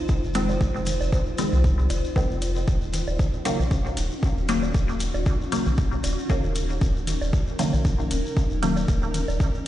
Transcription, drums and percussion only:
0.09 kick, shekere
0.24 shekere
0.34 closed hi-hat, shekere
0.49 low woodblock, shekere
0.61 kick, shekere
0.75 shekere
0.86 closed hi-hat, low conga, shekere
1.01 low woodblock, shekere
1.13 kick, shekere
1.26 shekere
1.38 closed hi-hat, shekere
1.52 low conga, shekere
1.64 kick, shekere
1.79 shekere
1.90 closed hi-hat, low woodblock, shekere
2.04 shekere
2.16 kick, shekere
2.30 shekere
2.42 closed hi-hat, low woodblock, shekere
2.55 shekere
2.68 kick, shekere
2.81 shekere
2.93 closed hi-hat, low conga, shekere
3.07 low woodblock, shekere
3.19 kick, shekere
3.33 shekere
3.45 closed hi-hat, shekere
3.59 low conga, low woodblock, shekere
3.71 kick, shekere
3.85 shekere
3.97 closed hi-hat, shekere
4.11 shekere
4.23 kick, shekere
4.38 shekere
4.49 closed hi-hat, shekere
4.63 low woodblock, shekere
4.75 kick, shekere
4.89 shekere
5.00 closed hi-hat, shekere
5.14 low woodblock, shekere
5.26 kick, shekere
5.41 shekere
5.52 closed hi-hat, shekere
5.66 low conga, shekere
5.77 kick, shekere
5.92 shekere
6.04 closed hi-hat, low woodblock, shekere
6.18 shekere
6.30 kick, shekere
6.43 shekere
6.55 closed hi-hat, shekere
6.70 shekere
6.81 kick, shekere
6.96 shekere
7.07 closed hi-hat, low conga, shekere
7.22 low woodblock, shekere
7.33 kick, shekere
7.47 shekere
7.59 closed hi-hat, shekere
7.73 low conga, low woodblock, shekere
7.85 kick, shekere
7.99 shekere
8.11 closed hi-hat, shekere
8.26 shekere
8.37 kick, shekere
8.50 shekere
8.63 closed hi-hat, shekere
8.76 low woodblock, shekere
8.88 kick, shekere
9.02 shekere
9.14 closed hi-hat, low conga, shekere
9.28 low woodblock, shekere
9.40 kick, shekere
9.54 shekere

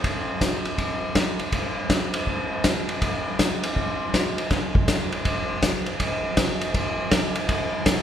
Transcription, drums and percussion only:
0.04 kick, ride
0.41 kick, snare, hi-hat pedal, ride
0.65 ride
0.78 kick, ride
1.15 kick, snare, hi-hat pedal, ride
1.39 ride
1.52 kick, ride
1.90 kick, snare, hi-hat pedal, ride
2.14 ride
2.27 kick
2.64 kick, snare, hi-hat pedal, ride
2.89 ride
3.02 kick, ride
3.39 kick, snare, hi-hat pedal, ride
3.63 ride
3.76 kick
4.14 kick, snare, hi-hat pedal, ride
4.38 ride
4.50 kick, snare, ride
4.75 kick
4.88 kick, snare, hi-hat pedal, ride
5.12 ride
5.25 kick, ride
5.62 kick, snare, hi-hat pedal, ride
5.86 ride
6.00 kick, ride
6.37 kick, snare, hi-hat pedal, ride
6.61 ride
6.74 kick, ride
7.11 kick, snare, hi-hat pedal, ride
7.35 ride
7.49 kick, ride
7.86 kick, snare, hi-hat pedal, ride

